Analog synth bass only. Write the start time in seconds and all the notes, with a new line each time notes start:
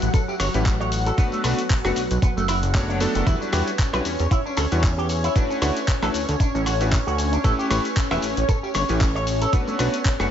0.02 A1
0.40 G1
0.55 A1
1.44 B1
1.85 F#1
1.97 B1
2.11 B1
2.37 F#1
2.63 F#1
3.15 F#1
3.27 E2
3.53 E2
3.94 B1
4.05 E2
4.20 E2
4.57 D2
4.72 E2
5.62 D2
6.02 A1
6.14 D2
6.29 D2
6.55 A1
7.07 D2
7.44 A1
7.70 A1
8.11 E1
8.23 A1
8.37 A1
8.75 G1
8.90 A1
9.79 B1
10.20 F#1